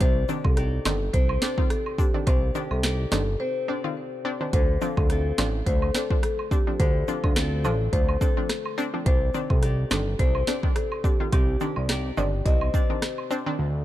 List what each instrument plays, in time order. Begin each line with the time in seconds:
Already playing: nylon-string guitar C4
0.00 analog synth bass C2, nylon-string guitar C3 D5, marimba C5, kick, closed hi-hat
0.29 synth pluck D#3 C4 D4, nylon-string guitar G4, cabasa
0.44 analog synth bass C2, marimba A4, kick, high woodblock
0.57 nylon-string guitar D#4 G4 D5, cross-stick, closed hi-hat
0.85 analog synth bass G1, synth pluck D#3 C4 D4, marimba A4, cross-stick, snare, cabasa, high woodblock
1.13 analog synth bass C2, nylon-string guitar C4, marimba C5, kick, closed hi-hat
1.29 high woodblock
1.42 synth pluck C4 D4, nylon-string guitar D5, cross-stick, snare, cabasa
1.58 synth pluck D#3 C4 F4, kick
1.70 marimba A4, cross-stick, closed hi-hat
1.86 high woodblock
1.98 synth pluck C4 D4, marimba G4, kick, cabasa
2.14 synth pluck D#3 C4 D4
2.27 analog synth bass C2, nylon-string guitar C3 D5, marimba C5, kick, closed hi-hat, high woodblock
2.55 synth pluck D#3 C4 D4, nylon-string guitar G4, cabasa
2.71 analog synth bass C2, marimba A4, high woodblock
2.83 nylon-string guitar D#4 G4 D5, cross-stick, snare, closed hi-hat
3.12 analog synth bass G1, synth pluck D#3 C4 D4, marimba A4, cross-stick, snare, cabasa, high woodblock
3.40 nylon-string guitar C4, marimba C5
3.68 synth pluck C4 D4, nylon-string guitar D5
3.84 synth pluck D#3 C4 F4
4.25 synth pluck C4 D4
4.41 synth pluck D#3 C4 D4
4.53 analog synth bass D2, nylon-string guitar D3 A4, marimba C5, kick, closed hi-hat
4.81 synth pluck F3 C4 D4, nylon-string guitar F4, cabasa
4.97 analog synth bass D2, marimba A4, kick, high woodblock
5.10 nylon-string guitar C4 F4 A4, cross-stick, closed hi-hat
5.38 analog synth bass A1, synth pluck F3 C4 D4, marimba A4, cross-stick, snare, cabasa, high woodblock
5.66 analog synth bass D2, nylon-string guitar A3, marimba C5, kick, closed hi-hat
5.82 high woodblock
5.95 synth pluck C4 D4, nylon-string guitar A4, cross-stick, snare, cabasa
6.10 synth pluck F3 C4 D4, kick
6.23 marimba A4, cross-stick, closed hi-hat
6.39 high woodblock
6.51 synth pluck C4 D4, marimba G4, kick, cabasa
6.67 synth pluck F3 C4 D4
6.80 analog synth bass D2, nylon-string guitar D3 A4, marimba C5, kick, closed hi-hat
7.08 synth pluck F3 C4 D4, nylon-string guitar F4, cabasa
7.24 analog synth bass D2, marimba A4, kick, high woodblock
7.36 nylon-string guitar C4 F4 A4, cross-stick, snare, closed hi-hat
7.65 analog synth bass A1, synth pluck F3 C4 D4, marimba A4, cabasa, high woodblock
7.93 analog synth bass D2, nylon-string guitar A3, marimba C5, kick, closed hi-hat
8.09 high woodblock
8.21 synth pluck C4 D4, nylon-string guitar A4, kick, cabasa
8.37 synth pluck F3 C4 D4
8.49 cross-stick, snare, closed hi-hat
8.65 high woodblock
8.78 synth pluck C4 D4, cabasa
8.94 synth pluck F3 C4 D4
9.06 analog synth bass C2, nylon-string guitar C3 D5, marimba C5, kick, closed hi-hat
9.34 synth pluck D#3 C4 D4, nylon-string guitar G4, cabasa
9.50 analog synth bass C2, marimba A4, kick, high woodblock
9.63 nylon-string guitar D#4 G4 D5, cross-stick, closed hi-hat
9.91 analog synth bass G1, synth pluck D#3 C4 D4, marimba A4, cross-stick, snare, cabasa, high woodblock
10.19 analog synth bass C2, nylon-string guitar C4, marimba C5, kick, closed hi-hat
10.35 high woodblock
10.47 synth pluck C4 D4, nylon-string guitar D5, cross-stick, snare, cabasa
10.63 synth pluck D#3 C4 D4, kick
10.76 marimba A4, cross-stick, closed hi-hat
10.92 high woodblock
11.04 synth pluck C4 D4, marimba G4, kick, cabasa
11.20 synth pluck D#3 C4 F4
11.32 analog synth bass C2, nylon-string guitar C3 D5, marimba G4, kick, closed hi-hat, high woodblock
11.60 synth pluck D#3 C4 D4, nylon-string guitar G4, cabasa
11.76 analog synth bass C2, marimba D5, high woodblock
11.89 nylon-string guitar D#4 G4 D5, cross-stick, snare, closed hi-hat
12.17 analog synth bass G1, synth pluck D#3 C4 D4, marimba D5, cabasa, high woodblock
12.46 analog synth bass C2, nylon-string guitar C4, marimba D#5, kick, closed hi-hat
12.61 high woodblock
12.74 synth pluck C4 D4, nylon-string guitar D5, kick, cabasa
12.90 synth pluck D#3 C4 D4
13.02 cross-stick, snare, closed hi-hat
13.18 high woodblock
13.31 synth pluck C4 D4, cabasa
13.46 synth pluck D#3 C4 D4
13.59 analog synth bass D2